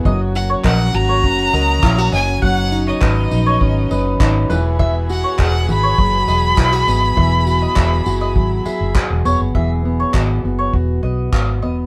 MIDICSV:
0, 0, Header, 1, 8, 480
1, 0, Start_track
1, 0, Tempo, 593472
1, 42, Time_signature, 4, 2, 24, 8
1, 9595, End_track
2, 0, Start_track
2, 0, Title_t, "Violin"
2, 0, Program_c, 0, 40
2, 288, Note_on_c, 0, 78, 90
2, 395, Note_off_c, 0, 78, 0
2, 530, Note_on_c, 0, 78, 102
2, 766, Note_on_c, 0, 82, 118
2, 778, Note_off_c, 0, 78, 0
2, 1720, Note_off_c, 0, 82, 0
2, 1725, Note_on_c, 0, 80, 97
2, 1946, Note_off_c, 0, 80, 0
2, 1966, Note_on_c, 0, 78, 101
2, 2298, Note_off_c, 0, 78, 0
2, 2328, Note_on_c, 0, 75, 80
2, 3251, Note_off_c, 0, 75, 0
2, 4134, Note_on_c, 0, 78, 86
2, 4350, Note_off_c, 0, 78, 0
2, 4373, Note_on_c, 0, 78, 98
2, 4590, Note_off_c, 0, 78, 0
2, 4614, Note_on_c, 0, 83, 110
2, 7214, Note_off_c, 0, 83, 0
2, 9595, End_track
3, 0, Start_track
3, 0, Title_t, "Mandolin"
3, 0, Program_c, 1, 25
3, 43, Note_on_c, 1, 75, 99
3, 157, Note_off_c, 1, 75, 0
3, 401, Note_on_c, 1, 73, 78
3, 519, Note_off_c, 1, 73, 0
3, 519, Note_on_c, 1, 75, 67
3, 634, Note_off_c, 1, 75, 0
3, 880, Note_on_c, 1, 73, 72
3, 995, Note_off_c, 1, 73, 0
3, 1240, Note_on_c, 1, 75, 75
3, 1469, Note_off_c, 1, 75, 0
3, 1718, Note_on_c, 1, 75, 79
3, 1833, Note_off_c, 1, 75, 0
3, 1958, Note_on_c, 1, 78, 104
3, 2073, Note_off_c, 1, 78, 0
3, 2322, Note_on_c, 1, 73, 77
3, 2435, Note_off_c, 1, 73, 0
3, 2439, Note_on_c, 1, 75, 76
3, 2554, Note_off_c, 1, 75, 0
3, 2801, Note_on_c, 1, 73, 80
3, 2915, Note_off_c, 1, 73, 0
3, 3161, Note_on_c, 1, 75, 70
3, 3388, Note_off_c, 1, 75, 0
3, 3637, Note_on_c, 1, 71, 89
3, 3753, Note_off_c, 1, 71, 0
3, 3877, Note_on_c, 1, 76, 99
3, 3992, Note_off_c, 1, 76, 0
3, 4236, Note_on_c, 1, 73, 76
3, 4352, Note_off_c, 1, 73, 0
3, 4356, Note_on_c, 1, 75, 72
3, 4472, Note_off_c, 1, 75, 0
3, 4716, Note_on_c, 1, 73, 74
3, 4832, Note_off_c, 1, 73, 0
3, 5077, Note_on_c, 1, 75, 75
3, 5306, Note_off_c, 1, 75, 0
3, 5561, Note_on_c, 1, 75, 77
3, 5674, Note_off_c, 1, 75, 0
3, 5800, Note_on_c, 1, 76, 100
3, 5914, Note_off_c, 1, 76, 0
3, 6161, Note_on_c, 1, 75, 80
3, 6274, Note_off_c, 1, 75, 0
3, 6280, Note_on_c, 1, 76, 76
3, 6393, Note_off_c, 1, 76, 0
3, 6641, Note_on_c, 1, 75, 82
3, 6754, Note_off_c, 1, 75, 0
3, 7001, Note_on_c, 1, 76, 68
3, 7228, Note_off_c, 1, 76, 0
3, 7484, Note_on_c, 1, 73, 83
3, 7596, Note_off_c, 1, 73, 0
3, 7723, Note_on_c, 1, 76, 85
3, 7835, Note_off_c, 1, 76, 0
3, 8086, Note_on_c, 1, 73, 70
3, 8200, Note_off_c, 1, 73, 0
3, 8200, Note_on_c, 1, 75, 64
3, 8314, Note_off_c, 1, 75, 0
3, 8562, Note_on_c, 1, 73, 69
3, 8675, Note_off_c, 1, 73, 0
3, 8920, Note_on_c, 1, 75, 66
3, 9149, Note_off_c, 1, 75, 0
3, 9401, Note_on_c, 1, 75, 71
3, 9516, Note_off_c, 1, 75, 0
3, 9595, End_track
4, 0, Start_track
4, 0, Title_t, "Steel-string acoustic guitar"
4, 0, Program_c, 2, 25
4, 0, Note_on_c, 2, 59, 61
4, 0, Note_on_c, 2, 64, 62
4, 0, Note_on_c, 2, 68, 65
4, 50, Note_on_c, 2, 54, 81
4, 92, Note_off_c, 2, 68, 0
4, 94, Note_off_c, 2, 64, 0
4, 95, Note_off_c, 2, 59, 0
4, 288, Note_on_c, 2, 66, 60
4, 526, Note_on_c, 2, 70, 66
4, 764, Note_off_c, 2, 66, 0
4, 767, Note_on_c, 2, 66, 59
4, 1008, Note_on_c, 2, 61, 67
4, 1238, Note_off_c, 2, 70, 0
4, 1248, Note_on_c, 2, 70, 70
4, 1481, Note_off_c, 2, 66, 0
4, 1484, Note_on_c, 2, 64, 65
4, 1605, Note_off_c, 2, 64, 0
4, 1605, Note_on_c, 2, 66, 52
4, 1719, Note_off_c, 2, 61, 0
4, 1722, Note_on_c, 2, 61, 65
4, 1957, Note_off_c, 2, 54, 0
4, 1961, Note_on_c, 2, 54, 86
4, 2011, Note_off_c, 2, 66, 0
4, 2012, Note_off_c, 2, 70, 0
4, 2198, Note_on_c, 2, 63, 62
4, 2223, Note_off_c, 2, 61, 0
4, 2437, Note_on_c, 2, 71, 71
4, 2674, Note_off_c, 2, 63, 0
4, 2683, Note_on_c, 2, 63, 60
4, 2928, Note_on_c, 2, 61, 73
4, 3164, Note_off_c, 2, 71, 0
4, 3168, Note_on_c, 2, 71, 73
4, 3393, Note_off_c, 2, 63, 0
4, 3403, Note_on_c, 2, 63, 69
4, 3647, Note_on_c, 2, 52, 88
4, 3689, Note_off_c, 2, 63, 0
4, 3692, Note_off_c, 2, 61, 0
4, 3880, Note_off_c, 2, 52, 0
4, 3883, Note_on_c, 2, 52, 89
4, 3907, Note_off_c, 2, 54, 0
4, 4124, Note_on_c, 2, 66, 64
4, 4366, Note_off_c, 2, 71, 0
4, 4369, Note_on_c, 2, 68, 69
4, 4601, Note_off_c, 2, 66, 0
4, 4605, Note_on_c, 2, 66, 61
4, 4842, Note_on_c, 2, 54, 68
4, 5078, Note_off_c, 2, 68, 0
4, 5081, Note_on_c, 2, 68, 66
4, 5318, Note_off_c, 2, 66, 0
4, 5321, Note_on_c, 2, 64, 63
4, 5440, Note_off_c, 2, 64, 0
4, 5440, Note_on_c, 2, 66, 54
4, 5557, Note_on_c, 2, 59, 65
4, 5791, Note_off_c, 2, 52, 0
4, 5794, Note_on_c, 2, 52, 84
4, 6030, Note_off_c, 2, 66, 0
4, 6039, Note_on_c, 2, 66, 62
4, 6277, Note_off_c, 2, 68, 0
4, 6280, Note_on_c, 2, 68, 66
4, 6520, Note_off_c, 2, 66, 0
4, 6524, Note_on_c, 2, 66, 64
4, 6760, Note_off_c, 2, 54, 0
4, 6763, Note_on_c, 2, 54, 70
4, 6998, Note_off_c, 2, 68, 0
4, 7001, Note_on_c, 2, 68, 67
4, 7242, Note_off_c, 2, 66, 0
4, 7245, Note_on_c, 2, 66, 68
4, 7479, Note_off_c, 2, 59, 0
4, 7482, Note_on_c, 2, 59, 63
4, 7725, Note_off_c, 2, 52, 0
4, 7729, Note_on_c, 2, 52, 78
4, 7730, Note_off_c, 2, 68, 0
4, 7733, Note_on_c, 2, 68, 68
4, 7964, Note_off_c, 2, 59, 0
4, 7967, Note_on_c, 2, 59, 56
4, 8206, Note_off_c, 2, 66, 0
4, 8210, Note_on_c, 2, 66, 57
4, 8447, Note_off_c, 2, 59, 0
4, 8451, Note_on_c, 2, 59, 54
4, 8688, Note_off_c, 2, 66, 0
4, 8692, Note_on_c, 2, 66, 53
4, 8927, Note_off_c, 2, 59, 0
4, 8931, Note_on_c, 2, 59, 59
4, 9165, Note_off_c, 2, 66, 0
4, 9168, Note_on_c, 2, 66, 57
4, 9406, Note_off_c, 2, 59, 0
4, 9409, Note_on_c, 2, 59, 56
4, 9594, Note_off_c, 2, 54, 0
4, 9595, Note_off_c, 2, 52, 0
4, 9595, Note_off_c, 2, 59, 0
4, 9595, Note_off_c, 2, 66, 0
4, 9595, Note_off_c, 2, 68, 0
4, 9595, End_track
5, 0, Start_track
5, 0, Title_t, "String section"
5, 0, Program_c, 3, 48
5, 46, Note_on_c, 3, 58, 81
5, 46, Note_on_c, 3, 61, 75
5, 47, Note_on_c, 3, 66, 90
5, 1943, Note_off_c, 3, 58, 0
5, 1944, Note_off_c, 3, 66, 0
5, 1963, Note_on_c, 3, 63, 96
5, 1965, Note_on_c, 3, 59, 86
5, 3609, Note_off_c, 3, 61, 0
5, 3624, Note_off_c, 3, 63, 0
5, 3635, Note_on_c, 3, 52, 81
5, 3637, Note_on_c, 3, 66, 68
5, 3639, Note_on_c, 3, 68, 84
5, 5538, Note_off_c, 3, 66, 0
5, 5560, Note_on_c, 3, 64, 73
5, 7685, Note_off_c, 3, 52, 0
5, 7687, Note_off_c, 3, 68, 0
5, 7690, Note_off_c, 3, 59, 0
5, 7698, Note_off_c, 3, 64, 0
5, 9595, End_track
6, 0, Start_track
6, 0, Title_t, "Fingered electric bass"
6, 0, Program_c, 4, 33
6, 42, Note_on_c, 4, 30, 108
6, 436, Note_off_c, 4, 30, 0
6, 521, Note_on_c, 4, 34, 104
6, 718, Note_off_c, 4, 34, 0
6, 760, Note_on_c, 4, 32, 82
6, 1003, Note_off_c, 4, 32, 0
6, 1003, Note_on_c, 4, 30, 104
6, 1199, Note_off_c, 4, 30, 0
6, 1240, Note_on_c, 4, 37, 97
6, 1437, Note_off_c, 4, 37, 0
6, 1480, Note_on_c, 4, 34, 97
6, 1677, Note_off_c, 4, 34, 0
6, 1719, Note_on_c, 4, 30, 92
6, 1916, Note_off_c, 4, 30, 0
6, 1960, Note_on_c, 4, 30, 104
6, 2354, Note_off_c, 4, 30, 0
6, 2439, Note_on_c, 4, 32, 96
6, 2636, Note_off_c, 4, 32, 0
6, 2681, Note_on_c, 4, 34, 94
6, 2878, Note_off_c, 4, 34, 0
6, 2921, Note_on_c, 4, 32, 88
6, 3117, Note_off_c, 4, 32, 0
6, 3160, Note_on_c, 4, 30, 94
6, 3357, Note_off_c, 4, 30, 0
6, 3399, Note_on_c, 4, 32, 99
6, 3596, Note_off_c, 4, 32, 0
6, 3637, Note_on_c, 4, 28, 109
6, 4228, Note_off_c, 4, 28, 0
6, 4359, Note_on_c, 4, 28, 105
6, 4598, Note_off_c, 4, 28, 0
6, 4598, Note_on_c, 4, 32, 97
6, 4795, Note_off_c, 4, 32, 0
6, 4839, Note_on_c, 4, 30, 100
6, 5036, Note_off_c, 4, 30, 0
6, 5075, Note_on_c, 4, 28, 96
6, 5273, Note_off_c, 4, 28, 0
6, 5319, Note_on_c, 4, 35, 95
6, 5516, Note_off_c, 4, 35, 0
6, 5558, Note_on_c, 4, 32, 87
6, 5755, Note_off_c, 4, 32, 0
6, 5800, Note_on_c, 4, 28, 111
6, 6193, Note_off_c, 4, 28, 0
6, 6278, Note_on_c, 4, 28, 108
6, 6475, Note_off_c, 4, 28, 0
6, 6519, Note_on_c, 4, 30, 88
6, 6760, Note_off_c, 4, 30, 0
6, 6760, Note_on_c, 4, 32, 100
6, 6956, Note_off_c, 4, 32, 0
6, 7122, Note_on_c, 4, 30, 81
6, 7220, Note_off_c, 4, 30, 0
6, 7362, Note_on_c, 4, 28, 89
6, 7459, Note_off_c, 4, 28, 0
6, 7482, Note_on_c, 4, 28, 89
6, 7579, Note_off_c, 4, 28, 0
6, 7602, Note_on_c, 4, 30, 92
6, 7699, Note_off_c, 4, 30, 0
6, 7724, Note_on_c, 4, 28, 91
6, 8116, Note_off_c, 4, 28, 0
6, 8202, Note_on_c, 4, 32, 97
6, 8398, Note_off_c, 4, 32, 0
6, 8442, Note_on_c, 4, 30, 86
6, 8638, Note_off_c, 4, 30, 0
6, 8682, Note_on_c, 4, 28, 84
6, 8879, Note_off_c, 4, 28, 0
6, 8920, Note_on_c, 4, 35, 88
6, 9117, Note_off_c, 4, 35, 0
6, 9161, Note_on_c, 4, 32, 89
6, 9401, Note_off_c, 4, 32, 0
6, 9401, Note_on_c, 4, 28, 81
6, 9595, Note_off_c, 4, 28, 0
6, 9595, End_track
7, 0, Start_track
7, 0, Title_t, "Muted fingered electric bass strokes"
7, 7000, Note_on_c, 9, 29, 49
7, 7081, Note_off_c, 9, 29, 0
7, 9595, End_track
8, 0, Start_track
8, 0, Title_t, "Drums"
8, 42, Note_on_c, 9, 36, 107
8, 123, Note_off_c, 9, 36, 0
8, 284, Note_on_c, 9, 54, 67
8, 365, Note_off_c, 9, 54, 0
8, 522, Note_on_c, 9, 36, 113
8, 522, Note_on_c, 9, 39, 117
8, 603, Note_off_c, 9, 36, 0
8, 603, Note_off_c, 9, 39, 0
8, 762, Note_on_c, 9, 54, 61
8, 843, Note_off_c, 9, 54, 0
8, 1002, Note_on_c, 9, 36, 110
8, 1083, Note_off_c, 9, 36, 0
8, 1244, Note_on_c, 9, 54, 66
8, 1325, Note_off_c, 9, 54, 0
8, 1480, Note_on_c, 9, 36, 127
8, 1486, Note_on_c, 9, 39, 127
8, 1560, Note_off_c, 9, 36, 0
8, 1567, Note_off_c, 9, 39, 0
8, 1723, Note_on_c, 9, 54, 71
8, 1804, Note_off_c, 9, 54, 0
8, 1961, Note_on_c, 9, 36, 97
8, 2042, Note_off_c, 9, 36, 0
8, 2200, Note_on_c, 9, 54, 69
8, 2281, Note_off_c, 9, 54, 0
8, 2440, Note_on_c, 9, 36, 120
8, 2440, Note_on_c, 9, 39, 114
8, 2520, Note_off_c, 9, 36, 0
8, 2521, Note_off_c, 9, 39, 0
8, 2680, Note_on_c, 9, 54, 61
8, 2761, Note_off_c, 9, 54, 0
8, 2920, Note_on_c, 9, 36, 108
8, 3001, Note_off_c, 9, 36, 0
8, 3161, Note_on_c, 9, 54, 70
8, 3242, Note_off_c, 9, 54, 0
8, 3398, Note_on_c, 9, 36, 125
8, 3405, Note_on_c, 9, 39, 124
8, 3479, Note_off_c, 9, 36, 0
8, 3486, Note_off_c, 9, 39, 0
8, 3642, Note_on_c, 9, 54, 71
8, 3723, Note_off_c, 9, 54, 0
8, 3880, Note_on_c, 9, 36, 99
8, 3961, Note_off_c, 9, 36, 0
8, 4120, Note_on_c, 9, 54, 66
8, 4201, Note_off_c, 9, 54, 0
8, 4359, Note_on_c, 9, 36, 121
8, 4359, Note_on_c, 9, 39, 116
8, 4439, Note_off_c, 9, 39, 0
8, 4440, Note_off_c, 9, 36, 0
8, 4598, Note_on_c, 9, 54, 60
8, 4679, Note_off_c, 9, 54, 0
8, 4839, Note_on_c, 9, 36, 117
8, 4920, Note_off_c, 9, 36, 0
8, 5080, Note_on_c, 9, 54, 66
8, 5161, Note_off_c, 9, 54, 0
8, 5318, Note_on_c, 9, 36, 121
8, 5325, Note_on_c, 9, 39, 122
8, 5399, Note_off_c, 9, 36, 0
8, 5406, Note_off_c, 9, 39, 0
8, 5564, Note_on_c, 9, 54, 70
8, 5644, Note_off_c, 9, 54, 0
8, 5801, Note_on_c, 9, 36, 103
8, 5882, Note_off_c, 9, 36, 0
8, 6041, Note_on_c, 9, 54, 71
8, 6122, Note_off_c, 9, 54, 0
8, 6279, Note_on_c, 9, 36, 125
8, 6280, Note_on_c, 9, 39, 116
8, 6360, Note_off_c, 9, 36, 0
8, 6360, Note_off_c, 9, 39, 0
8, 6517, Note_on_c, 9, 54, 61
8, 6598, Note_off_c, 9, 54, 0
8, 6761, Note_on_c, 9, 36, 111
8, 6841, Note_off_c, 9, 36, 0
8, 7000, Note_on_c, 9, 54, 74
8, 7081, Note_off_c, 9, 54, 0
8, 7239, Note_on_c, 9, 36, 126
8, 7244, Note_on_c, 9, 39, 127
8, 7320, Note_off_c, 9, 36, 0
8, 7325, Note_off_c, 9, 39, 0
8, 7486, Note_on_c, 9, 54, 72
8, 7566, Note_off_c, 9, 54, 0
8, 7723, Note_on_c, 9, 36, 97
8, 7804, Note_off_c, 9, 36, 0
8, 8202, Note_on_c, 9, 36, 107
8, 8203, Note_on_c, 9, 39, 104
8, 8283, Note_off_c, 9, 36, 0
8, 8284, Note_off_c, 9, 39, 0
8, 8683, Note_on_c, 9, 36, 106
8, 8764, Note_off_c, 9, 36, 0
8, 9161, Note_on_c, 9, 36, 110
8, 9168, Note_on_c, 9, 39, 107
8, 9242, Note_off_c, 9, 36, 0
8, 9249, Note_off_c, 9, 39, 0
8, 9595, End_track
0, 0, End_of_file